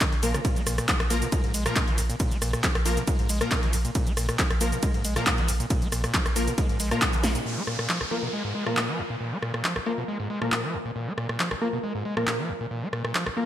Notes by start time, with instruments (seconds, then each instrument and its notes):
0.01 acid bass D#3, kick, clap, closed hi-hat, ride, shaker
0.12 sub bass A#1, acid bass C#3, closed hi-hat
0.23 sub bass A#1, acid bass A#2, synth stab F3 A#3 A#4, open hi-hat, shaker
0.34 acid bass C#3, cross-stick, closed hi-hat, shaker
0.45 acid bass A#2, kick, closed hi-hat, ride, shaker
0.56 sub bass A#1, acid bass A#3, closed hi-hat, shaker
0.67 sub bass A#1, acid bass A#2, cross-stick, open hi-hat, shaker
0.78 acid bass A#2, cross-stick, closed hi-hat, shaker
0.89 acid bass F3, kick, clap, closed hi-hat, ride, shaker
1.00 acid bass A#1, sub bass A#1, cross-stick, closed hi-hat
1.10 sub bass A#1, synth stab F3 A#3 A#4, acid bass A#3, open hi-hat, shaker
1.22 acid bass B2, closed hi-hat, shaker
1.32 acid bass G#3, kick, closed hi-hat, ride, shaker
1.44 sub bass A#1, acid bass G#2, closed hi-hat
1.54 sub bass A#1, acid bass G#3, open hi-hat, shaker
1.66 acid bass A#2, synth stab F3 A#3 A#4, cross-stick, closed hi-hat, shaker
1.76 acid bass A#2, kick, clap, closed hi-hat, ride, shaker
1.88 sub bass A#1, acid bass F3, closed hi-hat
1.98 acid bass A#1, sub bass A#1, open hi-hat, shaker
2.10 acid bass A#2, closed hi-hat, shaker
2.20 acid bass A#2, kick, closed hi-hat, ride, shaker
2.31 sub bass A#1, acid bass A#3, closed hi-hat, shaker
2.42 sub bass A#1, acid bass A#2, cross-stick, open hi-hat, shaker
2.53 acid bass A#2, cross-stick, closed hi-hat, shaker
2.64 acid bass F3, kick, clap, closed hi-hat, ride, shaker
2.75 acid bass A#1, sub bass A#1, cross-stick, closed hi-hat
2.86 sub bass A#1, synth stab F3 A#3 A#4, acid bass A#3, open hi-hat, shaker
2.97 acid bass B2, closed hi-hat, shaker
3.08 acid bass G#3, kick, closed hi-hat, ride, shaker
3.19 sub bass A#1, acid bass G#2, closed hi-hat
3.29 sub bass A#1, acid bass G#3, open hi-hat, shaker
3.41 acid bass A#2, synth stab F3 A#3 A#4, cross-stick, closed hi-hat, shaker
3.51 acid bass A#2, kick, clap, closed hi-hat, ride, shaker
3.63 sub bass A#1, acid bass F3, closed hi-hat
3.73 sub bass A#1, acid bass A#1, open hi-hat, shaker
3.85 acid bass A#2, closed hi-hat, shaker
3.95 acid bass A#2, kick, closed hi-hat, ride, shaker
4.07 sub bass A#1, acid bass A#3, closed hi-hat, shaker
4.17 sub bass A#1, acid bass A#2, cross-stick, open hi-hat, shaker
4.29 acid bass A#2, cross-stick, closed hi-hat, shaker
4.39 acid bass F3, kick, clap, closed hi-hat, ride, shaker
4.51 acid bass A#1, sub bass A#1, cross-stick, closed hi-hat
4.61 sub bass A#1, synth stab F3 A#3 A#4, acid bass A#3, open hi-hat, shaker
4.72 acid bass B2, closed hi-hat, shaker
4.83 acid bass G#3, kick, closed hi-hat, ride, shaker
4.94 sub bass A#1, acid bass G#2, closed hi-hat
5.05 sub bass A#1, acid bass G#3, open hi-hat, shaker
5.16 acid bass A#2, synth stab F3 A#3 A#4, cross-stick, closed hi-hat, shaker
5.27 acid bass A#2, kick, clap, closed hi-hat, ride, shaker
5.38 sub bass A#1, acid bass F3, closed hi-hat
5.48 acid bass A#1, sub bass A#1, open hi-hat, shaker
5.60 acid bass A#2, closed hi-hat, shaker
5.70 acid bass A#2, kick, closed hi-hat, ride, shaker
5.82 sub bass A#1, acid bass A#3, closed hi-hat, shaker
5.92 sub bass A#1, acid bass A#2, cross-stick, open hi-hat, shaker
6.04 acid bass A#2, cross-stick, closed hi-hat, shaker
6.14 acid bass F3, kick, clap, closed hi-hat, ride, shaker
6.26 acid bass A#1, sub bass A#1, cross-stick, closed hi-hat, shaker
6.36 sub bass A#1, synth stab F3 A#3 A#4, acid bass A#3, open hi-hat, shaker
6.48 acid bass B2, closed hi-hat, shaker
6.58 acid bass G#3, kick, closed hi-hat, ride, shaker
6.69 sub bass A#1, acid bass G#2, closed hi-hat
6.80 sub bass A#1, acid bass G#3, open hi-hat, shaker
6.91 acid bass A#2, synth stab F3 A#3 A#4, cross-stick, closed hi-hat, shaker
7.02 acid bass A#2, kick, clap, closed hi-hat, ride, shaker
7.13 sub bass A#1, acid bass F3, closed hi-hat, shaker
7.24 sub bass A#1, acid bass A#1, snare, open hi-hat, shaker
7.35 acid bass A#2, closed hi-hat, shaker
7.45 acid bass A#2, downlifter
7.57 acid bass A#3
7.67 acid bass A#2, cross-stick
7.79 acid bass A#2, cross-stick
7.89 acid bass F3, clap
8.01 acid bass A#1, cross-stick
8.11 synth stab F3 A#3 A#4, acid bass A#3
8.23 acid bass B2
8.33 acid bass G#3
8.45 acid bass G#2
8.55 acid bass G#3
8.66 acid bass A#2, synth stab F3 A#3 A#4, cross-stick
8.77 acid bass A#2, clap
8.88 acid bass F3
8.99 acid bass A#1
9.10 acid bass A#2
9.21 acid bass A#2
9.32 acid bass A#3
9.43 acid bass A#2, cross-stick
9.54 acid bass A#2, cross-stick
9.64 acid bass F3, clap
9.76 acid bass A#1, cross-stick
9.86 synth stab F3 A#3 A#4, acid bass A#3
9.98 acid bass B2
10.08 acid bass G#3
10.20 acid bass G#2
10.30 acid bass G#3
10.42 acid bass A#2, synth stab F3 A#3 A#4, cross-stick
10.52 acid bass A#2, clap
10.64 acid bass F3
10.74 acid bass A#1
10.85 acid bass A#2
10.96 acid bass A#2
11.07 acid bass A#3
11.18 acid bass A#2, cross-stick
11.29 acid bass A#2, cross-stick
11.40 acid bass F3, clap
11.51 acid bass A#1, cross-stick
11.62 synth stab F3 A#3 A#4, acid bass A#3
11.73 acid bass B2
11.83 acid bass G#3
11.95 acid bass G#2
12.05 acid bass G#3
12.17 acid bass A#2, synth stab F3 A#3 A#4, cross-stick
12.27 acid bass A#2, clap
12.39 acid bass F3
12.49 acid bass A#1
12.61 acid bass A#2
12.71 acid bass A#2
12.83 acid bass A#3
12.93 acid bass A#2, cross-stick
13.04 acid bass A#2, cross-stick
13.15 acid bass F3, clap
13.26 acid bass A#1, cross-stick
13.37 synth stab F3 A#3 A#4, acid bass A#3